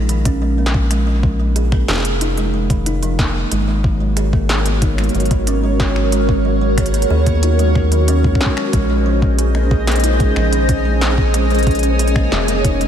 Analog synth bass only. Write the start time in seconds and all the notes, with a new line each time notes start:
Already playing: A#1
1.89 F1
3.19 F1
3.52 G#1
5.15 G#1
7.10 D#2
8.73 A#1
10.36 A#1
12.32 F1